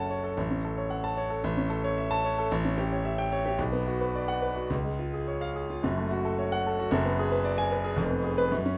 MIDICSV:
0, 0, Header, 1, 2, 480
1, 0, Start_track
1, 0, Key_signature, 3, "minor"
1, 0, Tempo, 533808
1, 344, Time_signature, 2, 2, 24, 8
1, 3228, Tempo, 559701
1, 5628, Tempo, 534759
1, 7771, End_track
2, 0, Start_track
2, 0, Title_t, "Grand piano"
2, 0, Program_c, 0, 0
2, 0, Control_c, 0, 64, 127
2, 0, Note_on_c, 0, 30, 67
2, 0, Note_on_c, 0, 42, 83
2, 0, Note_on_c, 0, 61, 60
2, 0, Note_on_c, 0, 69, 73
2, 0, Note_on_c, 0, 73, 69
2, 0, Note_on_c, 0, 78, 61
2, 0, Note_on_c, 0, 81, 89
2, 94, Note_off_c, 0, 73, 0
2, 94, Note_on_c, 0, 73, 68
2, 170, Note_off_c, 0, 81, 0
2, 214, Note_off_c, 0, 69, 0
2, 214, Note_on_c, 0, 69, 69
2, 290, Note_off_c, 0, 73, 0
2, 307, Note_off_c, 0, 30, 0
2, 311, Note_off_c, 0, 42, 0
2, 334, Note_on_c, 0, 33, 92
2, 339, Note_off_c, 0, 69, 0
2, 361, Note_off_c, 0, 61, 0
2, 361, Control_c, 0, 64, 0
2, 367, Note_off_c, 0, 78, 0
2, 455, Note_on_c, 0, 61, 62
2, 510, Control_c, 0, 64, 127
2, 580, Note_on_c, 0, 69, 67
2, 650, Note_off_c, 0, 61, 0
2, 699, Note_on_c, 0, 73, 66
2, 772, Note_off_c, 0, 69, 0
2, 812, Note_on_c, 0, 78, 69
2, 892, Note_off_c, 0, 73, 0
2, 933, Note_on_c, 0, 81, 89
2, 1009, Note_off_c, 0, 78, 0
2, 1056, Note_on_c, 0, 73, 74
2, 1130, Note_off_c, 0, 81, 0
2, 1170, Note_on_c, 0, 69, 70
2, 1251, Note_off_c, 0, 73, 0
2, 1268, Note_off_c, 0, 33, 0
2, 1293, Note_on_c, 0, 33, 96
2, 1296, Note_off_c, 0, 69, 0
2, 1317, Control_c, 0, 64, 0
2, 1414, Note_on_c, 0, 61, 68
2, 1481, Control_c, 0, 64, 127
2, 1526, Note_on_c, 0, 69, 75
2, 1611, Note_off_c, 0, 61, 0
2, 1657, Note_on_c, 0, 73, 85
2, 1727, Note_off_c, 0, 69, 0
2, 1775, Note_on_c, 0, 76, 73
2, 1853, Note_off_c, 0, 73, 0
2, 1894, Note_on_c, 0, 81, 114
2, 1973, Note_off_c, 0, 76, 0
2, 2020, Note_on_c, 0, 73, 84
2, 2092, Note_off_c, 0, 81, 0
2, 2142, Note_on_c, 0, 69, 84
2, 2214, Note_off_c, 0, 73, 0
2, 2231, Note_off_c, 0, 33, 0
2, 2261, Note_on_c, 0, 33, 106
2, 2263, Note_off_c, 0, 69, 0
2, 2279, Control_c, 0, 64, 0
2, 2380, Note_on_c, 0, 61, 76
2, 2431, Control_c, 0, 64, 127
2, 2498, Note_on_c, 0, 67, 82
2, 2572, Note_off_c, 0, 61, 0
2, 2627, Note_on_c, 0, 73, 73
2, 2691, Note_off_c, 0, 67, 0
2, 2743, Note_on_c, 0, 76, 79
2, 2816, Note_off_c, 0, 73, 0
2, 2863, Note_on_c, 0, 79, 103
2, 2935, Note_off_c, 0, 76, 0
2, 2987, Note_on_c, 0, 73, 85
2, 3057, Note_off_c, 0, 79, 0
2, 3108, Note_on_c, 0, 67, 84
2, 3181, Note_off_c, 0, 73, 0
2, 3198, Note_off_c, 0, 33, 0
2, 3224, Note_on_c, 0, 35, 93
2, 3230, Note_off_c, 0, 67, 0
2, 3241, Control_c, 0, 64, 0
2, 3341, Note_on_c, 0, 59, 76
2, 3412, Control_c, 0, 64, 127
2, 3464, Note_on_c, 0, 66, 76
2, 3534, Note_off_c, 0, 59, 0
2, 3587, Note_on_c, 0, 71, 73
2, 3656, Note_off_c, 0, 66, 0
2, 3712, Note_on_c, 0, 74, 77
2, 3778, Note_off_c, 0, 71, 0
2, 3821, Note_on_c, 0, 78, 89
2, 3901, Note_off_c, 0, 74, 0
2, 3940, Note_on_c, 0, 71, 73
2, 4016, Note_off_c, 0, 78, 0
2, 4057, Note_on_c, 0, 66, 69
2, 4136, Note_off_c, 0, 71, 0
2, 4156, Note_off_c, 0, 35, 0
2, 4181, Note_on_c, 0, 37, 83
2, 4183, Note_off_c, 0, 66, 0
2, 4204, Control_c, 0, 64, 0
2, 4304, Note_on_c, 0, 56, 63
2, 4338, Control_c, 0, 64, 127
2, 4429, Note_on_c, 0, 65, 64
2, 4500, Note_off_c, 0, 56, 0
2, 4555, Note_on_c, 0, 68, 64
2, 4623, Note_off_c, 0, 65, 0
2, 4675, Note_on_c, 0, 73, 65
2, 4746, Note_off_c, 0, 68, 0
2, 4791, Note_on_c, 0, 77, 82
2, 4868, Note_off_c, 0, 73, 0
2, 4915, Note_on_c, 0, 68, 66
2, 4988, Note_off_c, 0, 77, 0
2, 5038, Note_on_c, 0, 65, 65
2, 5110, Note_off_c, 0, 68, 0
2, 5126, Note_off_c, 0, 37, 0
2, 5149, Note_on_c, 0, 30, 81
2, 5156, Note_on_c, 0, 42, 91
2, 5158, Note_off_c, 0, 65, 0
2, 5173, Control_c, 0, 64, 0
2, 5276, Note_on_c, 0, 57, 65
2, 5330, Control_c, 0, 64, 127
2, 5391, Note_on_c, 0, 66, 77
2, 5464, Note_off_c, 0, 57, 0
2, 5508, Note_on_c, 0, 69, 79
2, 5580, Note_off_c, 0, 66, 0
2, 5627, Note_on_c, 0, 73, 69
2, 5698, Note_off_c, 0, 69, 0
2, 5747, Note_on_c, 0, 78, 106
2, 5820, Note_off_c, 0, 73, 0
2, 5876, Note_on_c, 0, 69, 75
2, 5940, Note_off_c, 0, 78, 0
2, 5994, Note_on_c, 0, 66, 79
2, 6063, Note_off_c, 0, 69, 0
2, 6074, Note_off_c, 0, 30, 0
2, 6077, Note_off_c, 0, 42, 0
2, 6098, Note_on_c, 0, 30, 106
2, 6105, Note_on_c, 0, 42, 99
2, 6110, Note_off_c, 0, 66, 0
2, 6125, Control_c, 0, 64, 0
2, 6227, Note_on_c, 0, 59, 73
2, 6243, Control_c, 0, 64, 127
2, 6349, Note_on_c, 0, 68, 85
2, 6417, Note_off_c, 0, 59, 0
2, 6462, Note_on_c, 0, 71, 81
2, 6538, Note_off_c, 0, 68, 0
2, 6576, Note_on_c, 0, 74, 85
2, 6654, Note_off_c, 0, 71, 0
2, 6697, Note_on_c, 0, 80, 116
2, 6771, Note_off_c, 0, 74, 0
2, 6821, Note_on_c, 0, 71, 71
2, 6891, Note_off_c, 0, 80, 0
2, 6935, Note_on_c, 0, 68, 83
2, 7013, Note_off_c, 0, 71, 0
2, 7027, Note_off_c, 0, 30, 0
2, 7031, Note_off_c, 0, 42, 0
2, 7043, Note_on_c, 0, 29, 97
2, 7055, Note_on_c, 0, 41, 97
2, 7057, Note_off_c, 0, 68, 0
2, 7079, Control_c, 0, 64, 0
2, 7169, Note_on_c, 0, 59, 70
2, 7235, Control_c, 0, 64, 127
2, 7289, Note_on_c, 0, 68, 74
2, 7367, Note_off_c, 0, 59, 0
2, 7414, Note_on_c, 0, 71, 106
2, 7488, Note_off_c, 0, 68, 0
2, 7519, Note_off_c, 0, 29, 0
2, 7525, Note_off_c, 0, 41, 0
2, 7538, Note_on_c, 0, 42, 88
2, 7539, Note_off_c, 0, 71, 0
2, 7560, Control_c, 0, 64, 0
2, 7662, Note_on_c, 0, 61, 78
2, 7718, Control_c, 0, 64, 127
2, 7771, Note_off_c, 0, 42, 0
2, 7771, Note_off_c, 0, 61, 0
2, 7771, End_track
0, 0, End_of_file